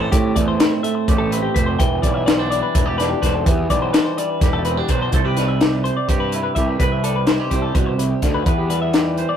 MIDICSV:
0, 0, Header, 1, 5, 480
1, 0, Start_track
1, 0, Key_signature, 0, "major"
1, 0, Tempo, 476569
1, 123, Time_signature, 7, 3, 24, 8
1, 9435, End_track
2, 0, Start_track
2, 0, Title_t, "Clean electric guitar"
2, 0, Program_c, 0, 27
2, 0, Note_on_c, 0, 69, 57
2, 115, Note_off_c, 0, 69, 0
2, 119, Note_on_c, 0, 67, 78
2, 359, Note_on_c, 0, 74, 71
2, 361, Note_off_c, 0, 67, 0
2, 477, Note_off_c, 0, 74, 0
2, 481, Note_on_c, 0, 72, 74
2, 597, Note_off_c, 0, 72, 0
2, 597, Note_on_c, 0, 71, 74
2, 720, Note_off_c, 0, 71, 0
2, 720, Note_on_c, 0, 72, 65
2, 834, Note_off_c, 0, 72, 0
2, 838, Note_on_c, 0, 76, 73
2, 957, Note_off_c, 0, 76, 0
2, 957, Note_on_c, 0, 72, 62
2, 1192, Note_on_c, 0, 69, 81
2, 1201, Note_off_c, 0, 72, 0
2, 1318, Note_off_c, 0, 69, 0
2, 1318, Note_on_c, 0, 71, 75
2, 1434, Note_on_c, 0, 67, 64
2, 1441, Note_off_c, 0, 71, 0
2, 1556, Note_on_c, 0, 71, 76
2, 1559, Note_off_c, 0, 67, 0
2, 1676, Note_on_c, 0, 72, 68
2, 1680, Note_off_c, 0, 71, 0
2, 1797, Note_off_c, 0, 72, 0
2, 1801, Note_on_c, 0, 79, 80
2, 2035, Note_off_c, 0, 79, 0
2, 2039, Note_on_c, 0, 74, 71
2, 2158, Note_off_c, 0, 74, 0
2, 2158, Note_on_c, 0, 76, 63
2, 2274, Note_off_c, 0, 76, 0
2, 2278, Note_on_c, 0, 74, 79
2, 2394, Note_off_c, 0, 74, 0
2, 2398, Note_on_c, 0, 72, 60
2, 2519, Note_off_c, 0, 72, 0
2, 2523, Note_on_c, 0, 74, 75
2, 2639, Note_off_c, 0, 74, 0
2, 2643, Note_on_c, 0, 71, 66
2, 2881, Note_off_c, 0, 71, 0
2, 2881, Note_on_c, 0, 74, 73
2, 2998, Note_off_c, 0, 74, 0
2, 3002, Note_on_c, 0, 71, 81
2, 3119, Note_off_c, 0, 71, 0
2, 3119, Note_on_c, 0, 67, 73
2, 3239, Note_off_c, 0, 67, 0
2, 3243, Note_on_c, 0, 71, 74
2, 3368, Note_off_c, 0, 71, 0
2, 3368, Note_on_c, 0, 69, 65
2, 3478, Note_off_c, 0, 69, 0
2, 3478, Note_on_c, 0, 67, 75
2, 3720, Note_off_c, 0, 67, 0
2, 3729, Note_on_c, 0, 74, 60
2, 3844, Note_off_c, 0, 74, 0
2, 3848, Note_on_c, 0, 72, 72
2, 3956, Note_off_c, 0, 72, 0
2, 3960, Note_on_c, 0, 71, 83
2, 4077, Note_off_c, 0, 71, 0
2, 4081, Note_on_c, 0, 72, 64
2, 4205, Note_off_c, 0, 72, 0
2, 4205, Note_on_c, 0, 74, 76
2, 4331, Note_off_c, 0, 74, 0
2, 4331, Note_on_c, 0, 71, 64
2, 4560, Note_off_c, 0, 71, 0
2, 4564, Note_on_c, 0, 69, 78
2, 4683, Note_off_c, 0, 69, 0
2, 4687, Note_on_c, 0, 71, 78
2, 4812, Note_off_c, 0, 71, 0
2, 4812, Note_on_c, 0, 67, 65
2, 4934, Note_off_c, 0, 67, 0
2, 4934, Note_on_c, 0, 71, 81
2, 5048, Note_off_c, 0, 71, 0
2, 5057, Note_on_c, 0, 72, 60
2, 5163, Note_off_c, 0, 72, 0
2, 5175, Note_on_c, 0, 72, 69
2, 5289, Note_off_c, 0, 72, 0
2, 5290, Note_on_c, 0, 67, 65
2, 5406, Note_off_c, 0, 67, 0
2, 5409, Note_on_c, 0, 71, 61
2, 5520, Note_off_c, 0, 71, 0
2, 5524, Note_on_c, 0, 76, 60
2, 5765, Note_off_c, 0, 76, 0
2, 5765, Note_on_c, 0, 74, 63
2, 5879, Note_off_c, 0, 74, 0
2, 5883, Note_on_c, 0, 72, 74
2, 6002, Note_off_c, 0, 72, 0
2, 6009, Note_on_c, 0, 74, 61
2, 6129, Note_off_c, 0, 74, 0
2, 6129, Note_on_c, 0, 72, 78
2, 6241, Note_off_c, 0, 72, 0
2, 6245, Note_on_c, 0, 71, 73
2, 6468, Note_off_c, 0, 71, 0
2, 6480, Note_on_c, 0, 71, 64
2, 6594, Note_off_c, 0, 71, 0
2, 6598, Note_on_c, 0, 76, 68
2, 6720, Note_off_c, 0, 76, 0
2, 6724, Note_on_c, 0, 71, 56
2, 6831, Note_off_c, 0, 71, 0
2, 6843, Note_on_c, 0, 71, 82
2, 6963, Note_off_c, 0, 71, 0
2, 6971, Note_on_c, 0, 76, 61
2, 7087, Note_off_c, 0, 76, 0
2, 7089, Note_on_c, 0, 69, 62
2, 7206, Note_off_c, 0, 69, 0
2, 7208, Note_on_c, 0, 71, 65
2, 7321, Note_off_c, 0, 71, 0
2, 7325, Note_on_c, 0, 72, 86
2, 7559, Note_on_c, 0, 67, 62
2, 7564, Note_off_c, 0, 72, 0
2, 7676, Note_on_c, 0, 69, 55
2, 7681, Note_off_c, 0, 67, 0
2, 7802, Note_off_c, 0, 69, 0
2, 7802, Note_on_c, 0, 71, 84
2, 7921, Note_off_c, 0, 71, 0
2, 7921, Note_on_c, 0, 72, 67
2, 8045, Note_off_c, 0, 72, 0
2, 8045, Note_on_c, 0, 71, 70
2, 8163, Note_off_c, 0, 71, 0
2, 8163, Note_on_c, 0, 67, 72
2, 8401, Note_off_c, 0, 67, 0
2, 8405, Note_on_c, 0, 71, 63
2, 8511, Note_off_c, 0, 71, 0
2, 8523, Note_on_c, 0, 71, 69
2, 8643, Note_off_c, 0, 71, 0
2, 8644, Note_on_c, 0, 67, 64
2, 8760, Note_on_c, 0, 71, 69
2, 8764, Note_off_c, 0, 67, 0
2, 8876, Note_off_c, 0, 71, 0
2, 8880, Note_on_c, 0, 76, 59
2, 9118, Note_off_c, 0, 76, 0
2, 9118, Note_on_c, 0, 74, 65
2, 9235, Note_off_c, 0, 74, 0
2, 9235, Note_on_c, 0, 72, 69
2, 9353, Note_off_c, 0, 72, 0
2, 9357, Note_on_c, 0, 74, 69
2, 9435, Note_off_c, 0, 74, 0
2, 9435, End_track
3, 0, Start_track
3, 0, Title_t, "Clean electric guitar"
3, 0, Program_c, 1, 27
3, 0, Note_on_c, 1, 45, 79
3, 0, Note_on_c, 1, 52, 77
3, 0, Note_on_c, 1, 60, 62
3, 0, Note_on_c, 1, 67, 53
3, 0, Note_on_c, 1, 72, 52
3, 102, Note_off_c, 1, 45, 0
3, 115, Note_on_c, 1, 45, 71
3, 121, Note_off_c, 1, 72, 0
3, 145, Note_off_c, 1, 67, 0
3, 279, Note_off_c, 1, 52, 0
3, 358, Note_on_c, 1, 57, 60
3, 598, Note_off_c, 1, 60, 0
3, 610, Note_on_c, 1, 60, 51
3, 831, Note_off_c, 1, 57, 0
3, 843, Note_on_c, 1, 57, 58
3, 1096, Note_on_c, 1, 67, 60
3, 1327, Note_off_c, 1, 60, 0
3, 1340, Note_on_c, 1, 60, 61
3, 1580, Note_on_c, 1, 72, 59
3, 1775, Note_off_c, 1, 57, 0
3, 1783, Note_off_c, 1, 72, 0
3, 1800, Note_off_c, 1, 45, 0
3, 1806, Note_on_c, 1, 52, 84
3, 1812, Note_off_c, 1, 60, 0
3, 2049, Note_on_c, 1, 55, 57
3, 2287, Note_on_c, 1, 60, 49
3, 2409, Note_off_c, 1, 60, 0
3, 2409, Note_on_c, 1, 62, 52
3, 2525, Note_off_c, 1, 55, 0
3, 2529, Note_on_c, 1, 55, 59
3, 2758, Note_off_c, 1, 67, 0
3, 2762, Note_on_c, 1, 64, 53
3, 2877, Note_off_c, 1, 64, 0
3, 2877, Note_on_c, 1, 67, 52
3, 3000, Note_off_c, 1, 62, 0
3, 3012, Note_on_c, 1, 62, 65
3, 3246, Note_on_c, 1, 72, 56
3, 3456, Note_off_c, 1, 72, 0
3, 3459, Note_off_c, 1, 62, 0
3, 3480, Note_off_c, 1, 67, 0
3, 3482, Note_off_c, 1, 52, 0
3, 3486, Note_on_c, 1, 52, 78
3, 3721, Note_off_c, 1, 55, 0
3, 3733, Note_on_c, 1, 55, 59
3, 3983, Note_on_c, 1, 62, 53
3, 4193, Note_off_c, 1, 55, 0
3, 4206, Note_on_c, 1, 55, 55
3, 4462, Note_on_c, 1, 67, 58
3, 4692, Note_off_c, 1, 62, 0
3, 4702, Note_on_c, 1, 60, 62
3, 4807, Note_off_c, 1, 60, 0
3, 4807, Note_on_c, 1, 62, 50
3, 4939, Note_on_c, 1, 72, 60
3, 5135, Note_off_c, 1, 52, 0
3, 5142, Note_off_c, 1, 72, 0
3, 5143, Note_off_c, 1, 67, 0
3, 5165, Note_off_c, 1, 62, 0
3, 5174, Note_on_c, 1, 48, 68
3, 5179, Note_on_c, 1, 69, 66
3, 5285, Note_off_c, 1, 69, 0
3, 5285, Note_on_c, 1, 71, 56
3, 5405, Note_off_c, 1, 55, 0
3, 5417, Note_on_c, 1, 55, 51
3, 5665, Note_on_c, 1, 67, 47
3, 5884, Note_off_c, 1, 71, 0
3, 5901, Note_on_c, 1, 72, 49
3, 6138, Note_off_c, 1, 67, 0
3, 6142, Note_on_c, 1, 67, 54
3, 6390, Note_on_c, 1, 64, 59
3, 6621, Note_off_c, 1, 67, 0
3, 6625, Note_on_c, 1, 67, 57
3, 6820, Note_off_c, 1, 48, 0
3, 6823, Note_off_c, 1, 72, 0
3, 6854, Note_on_c, 1, 48, 68
3, 6858, Note_on_c, 1, 71, 71
3, 7087, Note_off_c, 1, 55, 0
3, 7091, Note_on_c, 1, 55, 55
3, 7321, Note_off_c, 1, 67, 0
3, 7325, Note_off_c, 1, 64, 0
3, 7325, Note_on_c, 1, 64, 50
3, 7450, Note_off_c, 1, 64, 0
3, 7450, Note_on_c, 1, 67, 49
3, 7574, Note_off_c, 1, 71, 0
3, 7578, Note_on_c, 1, 72, 56
3, 7798, Note_off_c, 1, 48, 0
3, 7802, Note_on_c, 1, 47, 58
3, 8040, Note_off_c, 1, 47, 0
3, 8044, Note_on_c, 1, 48, 68
3, 8284, Note_off_c, 1, 48, 0
3, 8285, Note_on_c, 1, 50, 56
3, 8502, Note_off_c, 1, 72, 0
3, 8523, Note_off_c, 1, 50, 0
3, 8527, Note_off_c, 1, 67, 0
3, 8527, Note_on_c, 1, 52, 72
3, 8533, Note_on_c, 1, 71, 66
3, 8749, Note_off_c, 1, 55, 0
3, 8753, Note_on_c, 1, 55, 58
3, 9001, Note_on_c, 1, 67, 59
3, 9248, Note_off_c, 1, 71, 0
3, 9252, Note_on_c, 1, 72, 55
3, 9435, Note_off_c, 1, 52, 0
3, 9435, Note_off_c, 1, 55, 0
3, 9435, Note_off_c, 1, 67, 0
3, 9435, Note_off_c, 1, 72, 0
3, 9435, End_track
4, 0, Start_track
4, 0, Title_t, "Picked electric bass"
4, 0, Program_c, 2, 34
4, 124, Note_on_c, 2, 45, 89
4, 315, Note_off_c, 2, 45, 0
4, 365, Note_on_c, 2, 40, 80
4, 556, Note_off_c, 2, 40, 0
4, 1091, Note_on_c, 2, 33, 105
4, 1471, Note_off_c, 2, 33, 0
4, 1567, Note_on_c, 2, 29, 86
4, 1757, Note_off_c, 2, 29, 0
4, 1811, Note_on_c, 2, 28, 97
4, 2000, Note_off_c, 2, 28, 0
4, 2047, Note_on_c, 2, 35, 76
4, 2620, Note_off_c, 2, 35, 0
4, 2767, Note_on_c, 2, 28, 92
4, 3148, Note_off_c, 2, 28, 0
4, 3247, Note_on_c, 2, 28, 84
4, 3437, Note_off_c, 2, 28, 0
4, 3486, Note_on_c, 2, 40, 91
4, 3676, Note_off_c, 2, 40, 0
4, 3727, Note_on_c, 2, 35, 83
4, 3916, Note_off_c, 2, 35, 0
4, 4444, Note_on_c, 2, 28, 91
4, 4826, Note_off_c, 2, 28, 0
4, 4926, Note_on_c, 2, 35, 84
4, 5116, Note_off_c, 2, 35, 0
4, 5162, Note_on_c, 2, 36, 79
4, 5927, Note_off_c, 2, 36, 0
4, 6127, Note_on_c, 2, 43, 82
4, 6508, Note_off_c, 2, 43, 0
4, 6608, Note_on_c, 2, 36, 76
4, 6797, Note_off_c, 2, 36, 0
4, 6845, Note_on_c, 2, 36, 92
4, 7419, Note_off_c, 2, 36, 0
4, 7566, Note_on_c, 2, 36, 78
4, 7756, Note_off_c, 2, 36, 0
4, 7800, Note_on_c, 2, 36, 84
4, 8184, Note_off_c, 2, 36, 0
4, 8286, Note_on_c, 2, 38, 80
4, 8476, Note_off_c, 2, 38, 0
4, 8521, Note_on_c, 2, 40, 88
4, 9288, Note_off_c, 2, 40, 0
4, 9435, End_track
5, 0, Start_track
5, 0, Title_t, "Drums"
5, 124, Note_on_c, 9, 36, 97
5, 125, Note_on_c, 9, 42, 86
5, 225, Note_off_c, 9, 36, 0
5, 226, Note_off_c, 9, 42, 0
5, 364, Note_on_c, 9, 36, 68
5, 364, Note_on_c, 9, 42, 70
5, 465, Note_off_c, 9, 36, 0
5, 465, Note_off_c, 9, 42, 0
5, 603, Note_on_c, 9, 42, 89
5, 608, Note_on_c, 9, 38, 114
5, 704, Note_off_c, 9, 42, 0
5, 709, Note_off_c, 9, 38, 0
5, 847, Note_on_c, 9, 42, 67
5, 948, Note_off_c, 9, 42, 0
5, 1089, Note_on_c, 9, 36, 101
5, 1091, Note_on_c, 9, 42, 78
5, 1190, Note_off_c, 9, 36, 0
5, 1192, Note_off_c, 9, 42, 0
5, 1332, Note_on_c, 9, 42, 70
5, 1433, Note_off_c, 9, 42, 0
5, 1569, Note_on_c, 9, 36, 74
5, 1570, Note_on_c, 9, 42, 60
5, 1669, Note_off_c, 9, 36, 0
5, 1671, Note_off_c, 9, 42, 0
5, 1809, Note_on_c, 9, 36, 92
5, 1810, Note_on_c, 9, 42, 84
5, 1910, Note_off_c, 9, 36, 0
5, 1911, Note_off_c, 9, 42, 0
5, 2048, Note_on_c, 9, 36, 72
5, 2049, Note_on_c, 9, 42, 67
5, 2148, Note_off_c, 9, 36, 0
5, 2150, Note_off_c, 9, 42, 0
5, 2291, Note_on_c, 9, 42, 92
5, 2296, Note_on_c, 9, 38, 105
5, 2392, Note_off_c, 9, 42, 0
5, 2397, Note_off_c, 9, 38, 0
5, 2535, Note_on_c, 9, 42, 56
5, 2635, Note_off_c, 9, 42, 0
5, 2769, Note_on_c, 9, 42, 87
5, 2770, Note_on_c, 9, 36, 103
5, 2870, Note_off_c, 9, 42, 0
5, 2871, Note_off_c, 9, 36, 0
5, 3018, Note_on_c, 9, 42, 59
5, 3023, Note_on_c, 9, 38, 31
5, 3119, Note_off_c, 9, 42, 0
5, 3124, Note_off_c, 9, 38, 0
5, 3250, Note_on_c, 9, 36, 69
5, 3252, Note_on_c, 9, 42, 59
5, 3257, Note_on_c, 9, 38, 28
5, 3350, Note_off_c, 9, 36, 0
5, 3353, Note_off_c, 9, 42, 0
5, 3358, Note_off_c, 9, 38, 0
5, 3488, Note_on_c, 9, 36, 106
5, 3489, Note_on_c, 9, 42, 83
5, 3589, Note_off_c, 9, 36, 0
5, 3590, Note_off_c, 9, 42, 0
5, 3727, Note_on_c, 9, 36, 62
5, 3727, Note_on_c, 9, 42, 69
5, 3828, Note_off_c, 9, 36, 0
5, 3828, Note_off_c, 9, 42, 0
5, 3966, Note_on_c, 9, 42, 86
5, 3971, Note_on_c, 9, 38, 115
5, 4067, Note_off_c, 9, 42, 0
5, 4072, Note_off_c, 9, 38, 0
5, 4211, Note_on_c, 9, 42, 69
5, 4311, Note_off_c, 9, 42, 0
5, 4446, Note_on_c, 9, 36, 103
5, 4446, Note_on_c, 9, 42, 88
5, 4451, Note_on_c, 9, 38, 34
5, 4546, Note_off_c, 9, 36, 0
5, 4546, Note_off_c, 9, 42, 0
5, 4551, Note_off_c, 9, 38, 0
5, 4681, Note_on_c, 9, 42, 72
5, 4782, Note_off_c, 9, 42, 0
5, 4919, Note_on_c, 9, 42, 72
5, 4924, Note_on_c, 9, 36, 76
5, 5020, Note_off_c, 9, 42, 0
5, 5025, Note_off_c, 9, 36, 0
5, 5160, Note_on_c, 9, 42, 69
5, 5165, Note_on_c, 9, 36, 87
5, 5261, Note_off_c, 9, 42, 0
5, 5265, Note_off_c, 9, 36, 0
5, 5404, Note_on_c, 9, 42, 56
5, 5409, Note_on_c, 9, 38, 31
5, 5505, Note_off_c, 9, 42, 0
5, 5510, Note_off_c, 9, 38, 0
5, 5648, Note_on_c, 9, 42, 80
5, 5653, Note_on_c, 9, 38, 107
5, 5749, Note_off_c, 9, 42, 0
5, 5754, Note_off_c, 9, 38, 0
5, 5895, Note_on_c, 9, 42, 51
5, 5995, Note_off_c, 9, 42, 0
5, 6130, Note_on_c, 9, 36, 92
5, 6134, Note_on_c, 9, 42, 74
5, 6231, Note_off_c, 9, 36, 0
5, 6235, Note_off_c, 9, 42, 0
5, 6367, Note_on_c, 9, 42, 60
5, 6468, Note_off_c, 9, 42, 0
5, 6607, Note_on_c, 9, 42, 49
5, 6608, Note_on_c, 9, 36, 62
5, 6707, Note_off_c, 9, 42, 0
5, 6709, Note_off_c, 9, 36, 0
5, 6846, Note_on_c, 9, 42, 70
5, 6847, Note_on_c, 9, 36, 92
5, 6947, Note_off_c, 9, 42, 0
5, 6948, Note_off_c, 9, 36, 0
5, 7088, Note_on_c, 9, 42, 61
5, 7189, Note_off_c, 9, 42, 0
5, 7319, Note_on_c, 9, 42, 77
5, 7324, Note_on_c, 9, 38, 100
5, 7420, Note_off_c, 9, 42, 0
5, 7425, Note_off_c, 9, 38, 0
5, 7565, Note_on_c, 9, 36, 60
5, 7565, Note_on_c, 9, 42, 60
5, 7666, Note_off_c, 9, 36, 0
5, 7666, Note_off_c, 9, 42, 0
5, 7804, Note_on_c, 9, 36, 94
5, 7806, Note_on_c, 9, 42, 74
5, 7905, Note_off_c, 9, 36, 0
5, 7906, Note_off_c, 9, 42, 0
5, 8049, Note_on_c, 9, 42, 59
5, 8150, Note_off_c, 9, 42, 0
5, 8281, Note_on_c, 9, 42, 59
5, 8283, Note_on_c, 9, 36, 74
5, 8286, Note_on_c, 9, 38, 29
5, 8382, Note_off_c, 9, 42, 0
5, 8384, Note_off_c, 9, 36, 0
5, 8387, Note_off_c, 9, 38, 0
5, 8523, Note_on_c, 9, 36, 98
5, 8523, Note_on_c, 9, 42, 68
5, 8623, Note_off_c, 9, 42, 0
5, 8624, Note_off_c, 9, 36, 0
5, 8763, Note_on_c, 9, 42, 61
5, 8863, Note_off_c, 9, 42, 0
5, 8999, Note_on_c, 9, 42, 84
5, 9004, Note_on_c, 9, 38, 101
5, 9100, Note_off_c, 9, 42, 0
5, 9105, Note_off_c, 9, 38, 0
5, 9241, Note_on_c, 9, 42, 54
5, 9342, Note_off_c, 9, 42, 0
5, 9435, End_track
0, 0, End_of_file